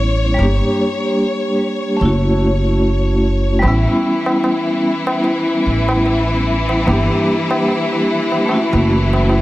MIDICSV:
0, 0, Header, 1, 5, 480
1, 0, Start_track
1, 0, Tempo, 810811
1, 228, Time_signature, 4, 2, 24, 8
1, 5574, End_track
2, 0, Start_track
2, 0, Title_t, "String section"
2, 0, Program_c, 0, 48
2, 0, Note_on_c, 0, 73, 82
2, 2141, Note_on_c, 0, 64, 80
2, 2142, Note_on_c, 0, 52, 87
2, 2157, Note_off_c, 0, 73, 0
2, 5574, Note_off_c, 0, 52, 0
2, 5574, Note_off_c, 0, 64, 0
2, 5574, End_track
3, 0, Start_track
3, 0, Title_t, "Vibraphone"
3, 0, Program_c, 1, 11
3, 0, Control_c, 1, 64, 127
3, 0, Note_on_c, 1, 55, 88
3, 0, Note_on_c, 1, 59, 82
3, 0, Note_on_c, 1, 61, 84
3, 0, Note_on_c, 1, 64, 105
3, 176, Note_off_c, 1, 55, 0
3, 183, Note_off_c, 1, 59, 0
3, 193, Note_off_c, 1, 61, 0
3, 201, Note_off_c, 1, 64, 0
3, 201, Note_on_c, 1, 55, 77
3, 218, Note_on_c, 1, 58, 65
3, 234, Control_c, 1, 64, 0
3, 237, Note_on_c, 1, 62, 69
3, 252, Note_on_c, 1, 67, 83
3, 326, Control_c, 1, 64, 127
3, 1134, Note_off_c, 1, 55, 0
3, 1142, Note_off_c, 1, 58, 0
3, 1152, Note_off_c, 1, 62, 0
3, 1160, Note_off_c, 1, 67, 0
3, 1164, Note_on_c, 1, 57, 76
3, 1181, Note_on_c, 1, 61, 68
3, 1194, Control_c, 1, 64, 0
3, 1198, Note_on_c, 1, 64, 71
3, 1216, Note_on_c, 1, 66, 86
3, 1292, Control_c, 1, 64, 127
3, 2096, Note_off_c, 1, 57, 0
3, 2104, Note_off_c, 1, 61, 0
3, 2113, Note_off_c, 1, 64, 0
3, 2122, Note_off_c, 1, 66, 0
3, 2126, Note_on_c, 1, 55, 88
3, 2142, Note_on_c, 1, 59, 84
3, 2156, Control_c, 1, 64, 0
3, 2161, Note_on_c, 1, 61, 82
3, 2176, Note_on_c, 1, 64, 98
3, 2256, Control_c, 1, 64, 127
3, 4016, Note_off_c, 1, 55, 0
3, 4025, Note_off_c, 1, 59, 0
3, 4034, Note_off_c, 1, 61, 0
3, 4041, Note_on_c, 1, 55, 75
3, 4042, Note_off_c, 1, 64, 0
3, 4057, Note_on_c, 1, 58, 68
3, 4075, Control_c, 1, 64, 0
3, 4076, Note_on_c, 1, 62, 72
3, 4095, Note_on_c, 1, 67, 82
3, 4182, Control_c, 1, 64, 127
3, 4974, Note_off_c, 1, 55, 0
3, 4982, Note_off_c, 1, 58, 0
3, 4991, Note_off_c, 1, 62, 0
3, 5001, Note_off_c, 1, 67, 0
3, 5005, Note_on_c, 1, 57, 75
3, 5022, Note_on_c, 1, 61, 66
3, 5037, Control_c, 1, 64, 0
3, 5039, Note_on_c, 1, 64, 70
3, 5056, Note_on_c, 1, 66, 83
3, 5151, Control_c, 1, 64, 127
3, 5574, Note_off_c, 1, 57, 0
3, 5574, Note_off_c, 1, 61, 0
3, 5574, Note_off_c, 1, 64, 0
3, 5574, Note_off_c, 1, 66, 0
3, 5574, End_track
4, 0, Start_track
4, 0, Title_t, "Upright bass"
4, 0, Program_c, 2, 32
4, 0, Note_on_c, 2, 33, 80
4, 209, Note_off_c, 2, 33, 0
4, 229, Note_on_c, 2, 31, 98
4, 351, Note_off_c, 2, 31, 0
4, 1189, Note_on_c, 2, 30, 92
4, 2129, Note_off_c, 2, 30, 0
4, 2150, Note_on_c, 2, 33, 100
4, 2272, Note_off_c, 2, 33, 0
4, 3351, Note_on_c, 2, 33, 78
4, 4050, Note_off_c, 2, 33, 0
4, 4070, Note_on_c, 2, 31, 102
4, 4191, Note_off_c, 2, 31, 0
4, 5168, Note_on_c, 2, 30, 104
4, 5574, Note_off_c, 2, 30, 0
4, 5574, End_track
5, 0, Start_track
5, 0, Title_t, "Tabla"
5, 2146, Note_on_c, 9, 60, 64
5, 2205, Note_off_c, 9, 60, 0
5, 2295, Note_on_c, 9, 60, 39
5, 2354, Note_off_c, 9, 60, 0
5, 2523, Note_on_c, 9, 60, 74
5, 2582, Note_off_c, 9, 60, 0
5, 2628, Note_on_c, 9, 60, 73
5, 2687, Note_off_c, 9, 60, 0
5, 2765, Note_on_c, 9, 60, 37
5, 2824, Note_off_c, 9, 60, 0
5, 3001, Note_on_c, 9, 60, 79
5, 3060, Note_off_c, 9, 60, 0
5, 3103, Note_on_c, 9, 60, 67
5, 3162, Note_off_c, 9, 60, 0
5, 3248, Note_on_c, 9, 60, 38
5, 3307, Note_off_c, 9, 60, 0
5, 3484, Note_on_c, 9, 60, 80
5, 3543, Note_off_c, 9, 60, 0
5, 3586, Note_on_c, 9, 60, 58
5, 3645, Note_off_c, 9, 60, 0
5, 3727, Note_on_c, 9, 60, 36
5, 3786, Note_off_c, 9, 60, 0
5, 3961, Note_on_c, 9, 60, 75
5, 4020, Note_off_c, 9, 60, 0
5, 4067, Note_on_c, 9, 60, 61
5, 4127, Note_off_c, 9, 60, 0
5, 4210, Note_on_c, 9, 60, 34
5, 4269, Note_off_c, 9, 60, 0
5, 4444, Note_on_c, 9, 60, 80
5, 4503, Note_off_c, 9, 60, 0
5, 4549, Note_on_c, 9, 60, 69
5, 4608, Note_off_c, 9, 60, 0
5, 4691, Note_on_c, 9, 60, 36
5, 4750, Note_off_c, 9, 60, 0
5, 4925, Note_on_c, 9, 60, 71
5, 4984, Note_off_c, 9, 60, 0
5, 5026, Note_on_c, 9, 60, 67
5, 5085, Note_off_c, 9, 60, 0
5, 5166, Note_on_c, 9, 60, 42
5, 5225, Note_off_c, 9, 60, 0
5, 5407, Note_on_c, 9, 60, 80
5, 5466, Note_off_c, 9, 60, 0
5, 5502, Note_on_c, 9, 60, 55
5, 5561, Note_off_c, 9, 60, 0
5, 5574, End_track
0, 0, End_of_file